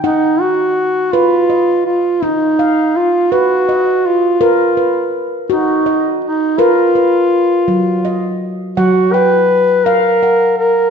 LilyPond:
<<
  \new Staff \with { instrumentName = "Handpan" } { \time 6/8 \tempo 4. = 55 << { <ges'' g''>4. r8 ees''4~ | ees''8 f''4. ees''4 | ces''8 ces''4. ees''4 | ces''8 ces''4. ees''4 |
ges''8 g''4. ges''4 | } \\ { ees'4 r8 ces''4 r8 | ees'4 r8 ces''4 r8 | bes'4 r8 ges'4 r8 | bes'4 r8 ges4 r8 |
ges4 r8 f''4 r8 | } >> }
  \new Staff \with { instrumentName = "Duduk" } { \time 6/8 ees'8 ges'4 f'4 f'8 | ees'4 f'8 ges'4 f'8~ | f'4 r8 ees'4 ees'8 | f'2~ f'8 r8 |
ges'8 ces''4 bes'4 bes'8 | }
>>